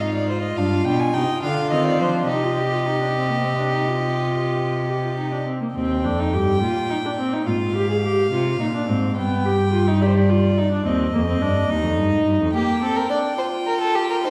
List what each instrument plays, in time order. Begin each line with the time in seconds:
Already playing: cello G#2, violin F4
0.00 viola D#4, violin D#5
0.15 violin D5
0.29 viola F4, violin C5
0.43 violin D#5
0.57 cello G2, violin D4 F5
0.85 cello B2, violin D4 G5
1.00 violin G#5
1.14 cello C3, violin D#4 G5
1.43 cello D3, viola D4, violin F4 F5
1.71 cello D#3, viola C4, violin D#5
1.86 violin D5
2.00 cello F3, viola D4, violin C5
2.28 cello C3, viola D#4, violin G4 D#5
2.44 viola F4
2.58 viola G4
2.72 viola F4
2.86 viola D#4
3.01 viola D4
3.16 viola C4
3.30 viola A#3
3.44 viola C4
3.59 viola D4
3.73 viola D#4
3.87 viola F4
4.88 viola G4
5.03 viola F4
5.18 viola D#4
5.32 viola D4
5.47 viola C4
5.61 viola A#3
5.75 cello D#2, viola C4, violin G5
6.04 cello F2, viola D4
6.19 viola D#4
6.33 cello G2, viola G4
6.62 cello A#2, viola F4
6.91 viola D#4
7.05 viola D4
7.19 viola C4
7.33 viola D#4
7.47 cello G#2, viola F4, violin F5
7.76 viola G4
7.90 viola G#4
8.04 viola G4
8.32 cello C3, viola F4
8.60 cello A#2, viola D#4
8.74 viola D4
8.88 cello G#2, viola C4
9.17 cello G2, viola B3, violin G5
9.45 viola G4
9.73 viola F4
9.87 viola D#4
10.01 viola G4, violin D5
10.08 violin C5
10.15 violin D5
10.29 viola F4
10.58 viola D#4
10.72 viola D4
10.85 cello D#2, viola C4, violin D#5
11.13 cello F2, viola A#3
11.28 viola C4
11.41 cello G2, viola D4
11.69 cello D#2, viola D#4
11.83 cello F2
11.98 cello G2
12.12 cello G#2
12.26 cello G2
12.40 cello F2
12.54 viola A#3, violin G4 G5
12.82 viola C4, violin A4
12.96 violin A#4
13.10 viola D4, violin D5
13.38 viola F4, violin C5
13.66 violin A#4
13.81 violin A4
13.95 violin G4
14.10 violin A#4
14.24 viola D#4, violin C5